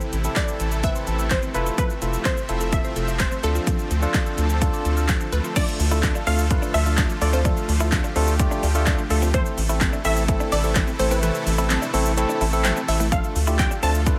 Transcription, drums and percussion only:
0.01 shaker soft
0.13 closed hi-hat medium
0.13 shaker medium
0.24 shaker medium
0.36 kick loud
0.36 snare medium
0.36 clap loud
0.36 closed hi-hat medium
0.36 shaker medium
0.48 shaker medium
0.60 closed hi-hat medium
0.60 shaker medium
0.72 shaker medium
0.84 kick loud
0.84 closed hi-hat medium
0.84 shaker medium
0.95 shaker medium
1.07 closed hi-hat soft
1.07 shaker soft
1.19 shaker medium
1.31 kick loud
1.31 snare loud
1.31 clap loud
1.31 closed hi-hat medium
1.31 shaker medium
1.43 shaker soft
1.54 closed hi-hat medium
1.54 shaker medium
1.66 shaker medium
1.78 kick loud
1.78 closed hi-hat medium
1.78 shaker medium
1.90 shaker soft
2.02 closed hi-hat medium
2.02 shaker medium
2.13 shaker medium
2.25 kick loud
2.25 snare loud
2.25 clap loud
2.25 closed hi-hat medium
2.25 shaker medium
2.37 shaker medium
2.49 closed hi-hat medium
2.49 shaker medium
2.61 shaker medium
2.72 kick loud
2.72 closed hi-hat medium
2.72 shaker medium
2.85 shaker medium
2.96 closed hi-hat soft
2.96 shaker soft
3.08 shaker medium
3.20 kick loud
3.20 snare loud
3.20 clap loud
3.20 closed hi-hat medium
3.20 shaker medium
3.31 shaker soft
3.43 closed hi-hat medium
3.43 shaker medium
3.55 shaker medium
3.67 kick loud
3.67 closed hi-hat medium
3.67 shaker medium
3.79 shaker soft
3.91 closed hi-hat medium
3.91 shaker medium
4.02 shaker medium
4.14 kick loud
4.14 snare loud
4.14 clap loud
4.14 closed hi-hat medium
4.14 shaker medium
4.26 shaker medium
4.38 closed hi-hat medium
4.38 shaker medium
4.50 shaker medium
4.62 kick loud
4.62 closed hi-hat medium
4.62 shaker medium
4.74 shaker medium
4.85 closed hi-hat soft
4.85 shaker soft
4.97 shaker medium
5.09 kick loud
5.09 snare loud
5.09 clap loud
5.09 closed hi-hat medium
5.09 shaker medium
5.21 shaker soft
5.32 closed hi-hat medium
5.32 shaker medium
5.44 shaker medium
5.56 kick loud
5.56 closed hi-hat medium
5.56 crash loud
5.56 shaker medium
5.68 shaker soft
5.80 open hi-hat medium
5.80 shaker medium
5.91 shaker medium
6.03 kick loud
6.03 snare loud
6.03 clap loud
6.03 closed hi-hat medium
6.03 shaker medium
6.15 shaker medium
6.27 open hi-hat medium
6.27 shaker medium
6.39 shaker medium
6.51 kick loud
6.51 closed hi-hat medium
6.51 shaker medium
6.63 shaker medium
6.74 open hi-hat medium
6.74 shaker soft
6.86 shaker medium
6.98 kick loud
6.98 snare loud
6.98 clap loud
6.98 closed hi-hat medium
6.98 shaker medium
7.10 shaker soft
7.21 open hi-hat medium
7.21 shaker medium
7.33 shaker medium
7.45 kick loud
7.45 closed hi-hat medium
7.45 shaker medium
7.57 shaker medium
7.69 open hi-hat medium
7.69 shaker medium
7.80 shaker medium
7.92 kick loud
7.92 snare loud
7.92 clap loud
7.92 closed hi-hat medium
7.92 shaker medium
8.04 shaker medium
8.16 open hi-hat medium
8.16 shaker medium
8.28 shaker medium
8.39 kick loud
8.39 closed hi-hat medium
8.39 shaker medium
8.51 shaker medium
8.63 open hi-hat medium
8.63 shaker soft
8.75 shaker medium
8.87 kick loud
8.87 snare loud
8.87 clap loud
8.87 closed hi-hat medium
8.87 shaker medium
8.98 shaker soft
9.10 open hi-hat medium
9.10 shaker medium
9.22 shaker medium
9.34 kick loud
9.34 closed hi-hat medium
9.34 shaker medium
9.46 shaker soft
9.58 open hi-hat medium
9.58 shaker medium
9.69 shaker medium
9.81 kick loud
9.81 snare loud
9.81 clap loud
9.81 closed hi-hat medium
9.81 shaker medium
9.93 shaker medium
10.05 open hi-hat medium
10.05 shaker medium
10.16 shaker medium
10.28 kick loud
10.28 closed hi-hat medium
10.28 shaker medium
10.40 shaker medium
10.52 open hi-hat medium
10.52 shaker soft
10.64 shaker medium
10.76 kick loud
10.76 snare loud
10.76 clap loud
10.76 closed hi-hat medium
10.76 shaker medium
10.87 shaker soft
10.99 open hi-hat medium
10.99 shaker medium
11.11 shaker medium
11.23 closed hi-hat medium
11.23 shaker medium
11.35 shaker soft
11.47 open hi-hat medium
11.47 shaker medium
11.58 shaker medium
11.70 snare loud
11.70 clap loud
11.70 closed hi-hat medium
11.70 shaker medium
11.82 shaker medium
11.94 open hi-hat medium
11.94 shaker medium
12.06 shaker medium
12.18 closed hi-hat medium
12.18 shaker medium
12.30 shaker medium
12.41 open hi-hat medium
12.41 shaker soft
12.53 shaker medium
12.65 snare loud
12.65 clap loud
12.65 closed hi-hat medium
12.65 shaker medium
12.77 shaker soft
12.88 open hi-hat medium
12.88 shaker medium
13.00 shaker medium
13.12 kick loud
13.12 closed hi-hat medium
13.12 shaker medium
13.24 shaker soft
13.36 open hi-hat medium
13.36 shaker medium
13.47 shaker medium
13.59 kick loud
13.59 snare loud
13.59 clap loud
13.59 closed hi-hat medium
13.59 shaker medium
13.71 shaker medium
13.83 open hi-hat medium
13.83 shaker medium
13.95 shaker medium
14.06 kick loud
14.06 closed hi-hat medium
14.06 shaker medium

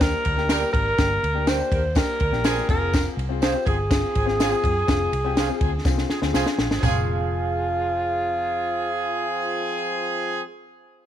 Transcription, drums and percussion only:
0.01 kick loud
0.01 snare loud
0.01 ride medium
0.01 tambourine medium
0.25 kick medium
0.25 ride medium
0.38 snare soft
0.49 snare loud
0.49 ride medium
0.49 tambourine loud
0.74 kick loud
0.74 ride medium
0.98 kick loud
0.98 snare loud
0.98 ride medium
0.98 tambourine medium
1.24 ride medium
1.47 snare loud
1.47 ride medium
1.47 tambourine medium
1.72 kick medium
1.72 ride medium
1.95 kick loud
1.95 snare loud
1.95 ride medium
1.95 tambourine medium
2.20 kick medium
2.20 ride medium
2.33 snare soft
2.44 snare loud
2.44 ride medium
2.44 tambourine medium
2.69 kick loud
2.69 ride medium
2.93 kick loud
2.93 snare loud
2.93 ride medium
2.93 tambourine medium
3.19 ride medium
3.42 snare loud
3.42 ride medium
3.42 tambourine medium
3.67 kick medium
3.67 ride medium
3.91 kick loud
3.91 snare loud
3.91 ride medium
3.91 tambourine medium
4.15 kick medium
4.15 ride medium
4.28 snare soft
4.40 snare loud
4.40 ride medium
4.40 tambourine loud
4.64 kick loud
4.64 ride medium
4.88 kick loud
4.88 snare loud
4.88 ride medium
4.88 tambourine medium
5.13 ride medium
5.37 snare loud
5.37 ride medium
5.37 tambourine medium
5.61 kick medium
5.61 ride medium
5.85 kick loud
5.85 snare medium
5.85 tambourine medium
5.98 snare medium
6.10 snare medium
6.22 snare medium
6.34 snare loud
6.34 tambourine medium
6.46 snare medium
6.59 snare loud
6.71 snare loud
6.83 kick loud
6.83 floor tom loud
6.83 tambourine medium
6.83 splash medium

